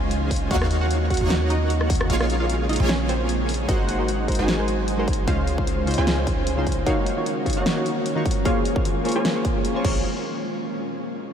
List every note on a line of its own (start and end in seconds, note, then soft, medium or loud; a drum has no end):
0.00 0.49 C#2 loud
0.00 0.49 C#3 medium
0.00 0.47 G#3 medium
0.00 0.49 G#3 medium
0.00 0.43 C#4 medium
0.00 0.49 C#4 medium
0.00 0.49 D#4 medium
0.00 0.49 F4 medium
0.00 0.49 C5 medium
0.00 0.43 C#5 loud
0.00 0.48 D#5 medium
0.00 0.49 G#5 medium
0.11 closed hi-hat medium
0.31 kick medium
0.31 open hi-hat medium
0.36 closed hi-hat medium
0.51 1.19 D#2 loud
0.51 2.08 D#3 medium
0.51 3.65 A#3 medium
0.51 1.19 A#3 medium
0.51 2.08 C#4 medium
0.51 1.19 D#4 medium
0.51 0.75 F#4 medium
0.51 2.08 F#4 medium
0.51 1.18 F#4 medium
0.51 1.19 C#5 medium
0.51 1.19 F5 medium
0.51 0.75 F#5 loud
0.51 kick loud
0.51 closed hi-hat medium
0.51 crash medium
0.62 cross-stick medium
0.71 closed hi-hat medium
0.81 1.05 F#4 medium
0.81 1.05 F#5 medium
0.91 closed hi-hat medium
1.10 1.27 F#4 medium
1.10 1.27 F#5 medium
1.10 kick medium
1.10 closed hi-hat soft
1.14 closed hi-hat medium
1.17 2.08 D#2 loud
1.17 2.07 D#4 medium
1.17 2.08 F#4 medium
1.17 2.08 C#5 medium
1.17 closed hi-hat medium
1.21 2.08 A#3 medium
1.21 2.08 F#5 medium
1.30 1.46 F#4 medium
1.30 1.46 F#5 medium
1.30 snare loud
1.30 closed hi-hat medium
1.50 2.02 D#4 medium
1.50 2.02 D#5 loud
1.50 closed hi-hat medium
1.70 closed hi-hat medium
1.81 cross-stick medium
1.90 kick loud
1.90 open hi-hat loud
1.95 closed hi-hat medium
2.01 cross-stick medium
2.10 2.78 A#1 medium
2.10 3.67 C#3 medium
2.10 3.67 G#3 medium
2.10 2.77 A#3 medium
2.10 2.34 F4 medium
2.10 2.77 F4 medium
2.10 2.77 G#4 medium
2.10 2.77 C#5 medium
2.10 2.34 F5 loud
2.10 2.77 F5 medium
2.10 closed hi-hat medium
2.10 crash soft
2.21 cross-stick medium
2.30 closed hi-hat medium
2.40 2.64 F4 medium
2.40 2.64 F5 medium
2.50 closed hi-hat medium
2.69 2.86 D#4 medium
2.69 2.86 D#5 medium
2.69 closed hi-hat medium
2.73 closed hi-hat medium
2.76 3.66 A#3 medium
2.76 3.66 F4 medium
2.76 3.66 G#4 medium
2.76 3.66 C#5 medium
2.76 closed hi-hat medium
2.80 3.67 A#1 loud
2.80 3.66 G#5 medium
2.89 3.06 C#4 medium
2.89 3.06 C#5 medium
2.89 snare loud
2.89 closed hi-hat medium
3.09 3.61 C4 medium
3.09 3.61 C5 loud
3.09 closed hi-hat medium
3.29 closed hi-hat medium
3.49 open hi-hat loud
3.54 closed hi-hat medium
3.68 4.37 G#1 loud
3.68 5.26 F#3 medium
3.68 3.78 G#3 medium
3.68 4.36 G#3 medium
3.68 5.26 G#3 medium
3.68 3.78 D#4 medium
3.68 4.36 D#4 medium
3.68 3.78 F#4 medium
3.68 4.36 F#4 medium
3.68 3.78 A#4 medium
3.68 4.36 C5 medium
3.68 6.83 C5 medium
3.68 3.79 C5 medium
3.68 4.36 F#5 medium
3.68 kick loud
3.68 closed hi-hat medium
3.89 closed hi-hat medium
3.98 4.07 G#3 medium
3.98 4.07 D#4 medium
3.98 4.07 F#4 medium
3.98 4.08 A#4 medium
3.98 4.08 C5 medium
4.08 closed hi-hat medium
4.27 4.56 G#3 medium
4.27 4.56 D#4 medium
4.27 4.56 F#4 medium
4.27 4.56 A#4 medium
4.27 4.57 C5 medium
4.27 kick medium
4.27 closed hi-hat soft
4.32 closed hi-hat medium
4.35 5.26 G#1 medium
4.35 5.25 G#3 medium
4.35 5.25 D#4 medium
4.35 5.25 F#4 medium
4.35 5.25 C5 medium
4.35 5.25 G#5 medium
4.35 closed hi-hat medium
4.48 snare loud
4.48 closed hi-hat medium
4.58 4.66 G#3 medium
4.58 4.67 D#4 medium
4.58 4.67 F#4 medium
4.58 4.67 A#4 medium
4.58 4.67 C5 medium
4.68 closed hi-hat medium
4.88 closed hi-hat medium
4.97 5.06 G#3 medium
4.97 5.06 D#4 medium
4.97 5.07 F#4 medium
4.97 5.07 A#4 medium
4.97 5.07 C5 loud
5.08 kick loud
5.08 closed hi-hat medium
5.13 closed hi-hat medium
5.27 5.96 C#2 loud
5.27 5.36 C#3 medium
5.27 6.85 C#3 medium
5.27 6.85 G#3 medium
5.27 5.95 G#3 medium
5.27 5.37 C#4 medium
5.27 5.95 C#4 medium
5.27 6.85 D#4 medium
5.27 5.37 D#4 medium
5.27 5.95 F4 medium
5.27 5.37 F4 medium
5.27 5.95 C5 medium
5.27 5.37 C5 medium
5.27 5.95 F5 medium
5.27 kick loud
5.27 closed hi-hat medium
5.47 closed hi-hat medium
5.57 5.66 C#3 medium
5.57 5.66 C#4 medium
5.57 5.66 D#4 medium
5.57 5.66 F4 medium
5.57 5.67 C5 medium
5.57 kick loud
5.67 closed hi-hat medium
5.86 6.15 C#3 medium
5.86 6.15 C#4 medium
5.86 6.15 D#4 medium
5.86 6.15 F4 medium
5.86 6.16 C5 loud
5.86 closed hi-hat soft
5.91 closed hi-hat medium
5.94 closed hi-hat medium
5.98 6.85 C#2 medium
5.98 6.84 G#3 medium
5.98 6.84 C#4 medium
5.98 6.84 F4 medium
5.98 6.84 C5 medium
5.98 6.84 G#5 medium
6.07 snare loud
6.07 closed hi-hat medium
6.17 6.25 C#3 medium
6.17 6.26 C#4 medium
6.17 6.26 D#4 medium
6.17 6.26 F4 medium
6.17 6.26 C5 medium
6.27 kick loud
6.27 closed hi-hat medium
6.47 closed hi-hat medium
6.56 6.65 C#3 medium
6.56 6.65 C#4 medium
6.56 6.66 D#4 medium
6.56 6.66 F4 medium
6.56 6.66 C5 loud
6.67 kick medium
6.67 closed hi-hat soft
6.72 closed hi-hat medium
6.86 6.95 D#3 medium
6.86 8.44 D#3 medium
6.86 9.82 A#3 medium
6.86 7.54 A#3 medium
6.86 8.44 C#4 medium
6.86 6.96 D#4 medium
6.86 7.54 D#4 medium
6.86 6.96 F4 medium
6.86 8.44 F#4 medium
6.86 7.54 F#4 medium
6.86 6.96 F#4 medium
6.86 7.54 C#5 medium
6.86 6.96 C#5 medium
6.86 7.54 F5 medium
6.86 kick loud
6.86 closed hi-hat medium
7.06 closed hi-hat medium
7.16 7.25 D#3 medium
7.16 7.25 D#4 medium
7.16 7.25 F4 medium
7.16 7.25 F#4 medium
7.16 7.26 C#5 medium
7.26 closed hi-hat medium
7.45 7.74 D#3 medium
7.45 7.74 D#4 medium
7.45 7.74 F4 medium
7.45 7.74 F#4 medium
7.45 7.75 C#5 loud
7.45 kick medium
7.45 closed hi-hat soft
7.50 closed hi-hat medium
7.53 8.43 A#3 medium
7.53 8.43 F#4 medium
7.53 8.43 C#5 medium
7.53 8.43 F#5 medium
7.53 closed hi-hat medium
7.57 8.43 D#4 medium
7.66 snare loud
7.66 closed hi-hat medium
7.76 7.84 D#3 medium
7.76 7.85 D#4 medium
7.76 7.85 F4 medium
7.76 7.85 F#4 medium
7.76 7.85 C#5 medium
7.86 closed hi-hat medium
8.06 closed hi-hat medium
8.15 8.24 D#3 medium
8.15 8.24 D#4 medium
8.15 8.24 F4 medium
8.15 8.25 F#4 medium
8.15 8.25 C#5 loud
8.26 kick loud
8.26 closed hi-hat soft
8.31 closed hi-hat medium
8.44 9.83 G#3 medium
8.44 8.54 A#3 medium
8.44 9.13 A#3 medium
8.44 9.83 C#4 medium
8.44 8.55 F4 medium
8.44 9.13 F4 medium
8.44 8.55 G#4 medium
8.44 9.13 G#4 medium
8.44 8.55 C5 medium
8.44 9.13 C#5 medium
8.44 8.55 C#5 loud
8.44 9.13 F5 medium
8.44 kick loud
8.44 closed hi-hat medium
8.65 closed hi-hat medium
8.75 8.84 A#3 medium
8.75 8.84 F4 medium
8.75 8.84 G#4 medium
8.75 8.84 C5 medium
8.75 8.85 C#5 medium
8.75 kick loud
8.85 closed hi-hat medium
9.04 9.32 A#3 medium
9.04 9.33 F4 medium
9.04 9.33 G#4 medium
9.04 9.33 C5 medium
9.04 9.34 C#5 loud
9.04 closed hi-hat soft
9.09 closed hi-hat medium
9.12 closed hi-hat medium
9.16 9.83 A#3 medium
9.16 9.83 F4 medium
9.16 9.83 G#4 medium
9.16 9.83 C#5 medium
9.16 9.85 G#5 medium
9.25 snare loud
9.25 closed hi-hat medium
9.35 9.43 A#3 medium
9.35 9.43 F4 medium
9.35 9.44 G#4 medium
9.35 9.44 C5 medium
9.35 9.44 C#5 medium
9.45 kick loud
9.45 closed hi-hat medium
9.65 closed hi-hat medium
9.74 9.80 A#3 medium
9.74 9.82 F4 medium
9.74 9.83 G#4 medium
9.74 9.84 C5 medium
9.74 9.84 C#5 loud
9.82 10.03 A#1 medium
9.82 9.98 A#3 medium
9.82 10.00 A#3 medium
9.82 9.99 F4 medium
9.82 10.00 F4 medium
9.82 10.00 G#4 medium
9.82 10.00 C#5 medium
9.82 10.00 F5 medium
9.82 kick loud
9.82 crash medium
9.86 10.00 C5 medium
9.86 10.01 C#5 medium